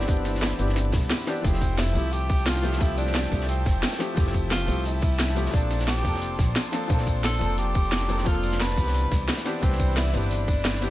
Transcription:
Already playing: upright bass G1, grand piano E3 B3 C4 D4 G4, tenor saxophone D4, analog synth pad D5 E5 B5
0.00 snare
0.06 grand piano E3 B3 C4 D4, kick, closed hi-hat
0.11 grand piano G4
0.17 closed hi-hat
0.25 snare, closed hi-hat
0.35 snare
0.42 snare, closed hi-hat
0.51 snare
0.57 upright bass G1, grand piano E3 B3 C4 D4, closed hi-hat, open hi-hat
0.62 grand piano G4
0.68 snare, closed hi-hat
0.76 snare, closed hi-hat
0.85 closed hi-hat
0.92 upright bass C2, kick, snare, closed hi-hat, open hi-hat
1.10 snare, closed hi-hat, open hi-hat
1.19 closed hi-hat
1.26 grand piano E3 B3 C4 D4 G4, tenor saxophone D4, snare, closed hi-hat, open hi-hat
1.36 closed hi-hat
1.42 upright bass F1, grand piano F3 A3 C4 E4, tenor saxophone C4, analog synth pad E5 G5 A5, kick, closed hi-hat
1.47 grand piano G4
1.53 snare, closed hi-hat
1.61 kick, closed hi-hat, ride bell
1.78 tenor saxophone E4, snare, closed hi-hat, open hi-hat
1.93 upright bass C2, grand piano F3 A3 C4 E4, closed hi-hat, open hi-hat, ride bell
1.98 grand piano G4
2.05 closed hi-hat
2.13 tenor saxophone G4, closed hi-hat
2.29 kick, closed hi-hat, ride bell
2.38 closed hi-hat
2.46 tenor saxophone F4, snare, closed hi-hat
2.55 snare
2.63 grand piano F3 A3 C4 E4 G4, closed hi-hat, open hi-hat, ride bell
2.72 snare
2.79 grand piano F3 A3 C4 E4, tenor saxophone E4, kick, closed hi-hat
2.83 grand piano G4
2.89 closed hi-hat
2.98 tenor saxophone D4, closed hi-hat, ride bell
3.07 snare
3.15 snare, closed hi-hat
3.25 snare
3.29 upright bass C2, grand piano F3 A3 C4 E4, kick, closed hi-hat, open hi-hat, ride bell
3.34 grand piano G4
3.41 snare
3.49 tenor saxophone C4, closed hi-hat
3.66 upright bass F1, kick, snare, closed hi-hat, ride bell
3.83 snare, closed hi-hat, open hi-hat
3.88 snare, open hi-hat
3.92 snare, open hi-hat
3.99 grand piano F3 A3 C4 E4 G4, snare, closed hi-hat, open hi-hat, ride bell
4.15 upright bass F1, grand piano F3 A3 C4 E4, kick, closed hi-hat
4.19 grand piano G4
4.26 snare, closed hi-hat
4.34 kick, closed hi-hat, ride bell
4.51 tenor saxophone F4, snare, closed hi-hat, open hi-hat
4.66 upright bass C2, grand piano F3 A3 C4 E4, closed hi-hat, open hi-hat, ride bell
4.70 grand piano G4
4.78 closed hi-hat
4.85 tenor saxophone E4, closed hi-hat
5.01 kick, closed hi-hat, ride bell
5.12 closed hi-hat
5.19 snare, closed hi-hat
5.28 snare
5.35 grand piano F3 A3 C4 E4 G4, closed hi-hat, open hi-hat, ride bell
5.46 snare
5.51 upright bass A#1, grand piano F3 A#3 C4 D4, tenor saxophone D4, analog synth pad D5 C6, kick, closed hi-hat
5.56 grand piano A4
5.62 closed hi-hat
5.71 snare, closed hi-hat, ride bell
5.79 snare
5.88 tenor saxophone G4, snare, closed hi-hat
5.97 snare
6.02 upright bass F1, grand piano F3 A#3 C4 D4, kick, closed hi-hat, open hi-hat, ride bell
6.07 grand piano A4
6.14 snare, closed hi-hat
6.22 closed hi-hat
6.39 upright bass A#1, kick, snare, closed hi-hat, ride bell
6.56 snare, closed hi-hat
6.65 closed hi-hat
6.72 grand piano F3 A#3 C4 D4 A4, snare, closed hi-hat, open hi-hat, ride bell
6.88 upright bass A#1, grand piano F3 A#3 C4 D4, kick, closed hi-hat
6.92 grand piano A4
6.98 snare, closed hi-hat
7.07 kick, closed hi-hat, ride bell
7.24 tenor saxophone A4, snare, closed hi-hat, open hi-hat
7.39 upright bass F1, grand piano F3 A#3 C4 D4, closed hi-hat, open hi-hat, ride bell
7.43 grand piano A4
7.49 closed hi-hat
7.58 tenor saxophone G4, closed hi-hat
7.74 kick, closed hi-hat, ride bell
7.84 closed hi-hat
7.92 snare, closed hi-hat
8.01 snare
8.08 grand piano F3 A#3 C4 D4 A4, closed hi-hat, open hi-hat, ride bell
8.18 snare
8.24 grand piano F3 A#3 C4 D4, tenor saxophone F4, kick, closed hi-hat
8.29 grand piano A4
8.35 closed hi-hat
8.43 closed hi-hat, ride bell
8.52 snare
8.60 tenor saxophone B4, snare, closed hi-hat
8.70 snare
8.75 upright bass C2, grand piano E3 B3 C4 D4, analog synth pad E5 B5, kick, closed hi-hat, open hi-hat, ride bell
8.80 grand piano G4
8.87 snare
8.94 closed hi-hat
9.11 upright bass C2, kick, snare, closed hi-hat, ride bell
9.28 snare, closed hi-hat, open hi-hat
9.33 snare, open hi-hat
9.37 snare, open hi-hat
9.44 grand piano E3 B3 C4 D4 G4, tenor saxophone D4, snare, closed hi-hat, open hi-hat, ride bell
9.60 upright bass C2, grand piano E3 C4 D4 B4, tenor saxophone C4, kick, closed hi-hat
9.65 grand piano G4
9.71 snare, closed hi-hat
9.80 kick, closed hi-hat, ride bell
9.96 tenor saxophone E4, snare, closed hi-hat, open hi-hat
10.12 upright bass G1, grand piano E3 B3 C4 D4, tenor saxophone D4, closed hi-hat, open hi-hat, ride bell
10.16 grand piano G4
10.22 closed hi-hat
10.31 closed hi-hat
10.48 kick, closed hi-hat, ride bell
10.56 closed hi-hat
10.65 snare, closed hi-hat
10.74 snare
10.81 grand piano E3 B3 C4 D4 G4, closed hi-hat, open hi-hat, ride bell

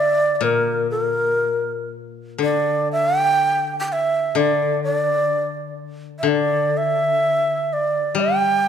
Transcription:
Already playing: koto D3, shakuhachi D5
0.35 shakuhachi D5
0.41 koto A#2, shakuhachi A#4
0.91 shakuhachi A#4
2.38 koto D3
2.43 shakuhachi D5
2.92 shakuhachi E5
3.19 shakuhachi G5
3.80 shakuhachi G5
3.88 shakuhachi G5
3.92 shakuhachi E5
4.35 koto D3, shakuhachi D5
4.84 shakuhachi D5
6.19 koto D3, shakuhachi E5
6.28 shakuhachi D5
6.77 shakuhachi E5
7.73 shakuhachi D5
8.15 koto G3
8.20 shakuhachi G5

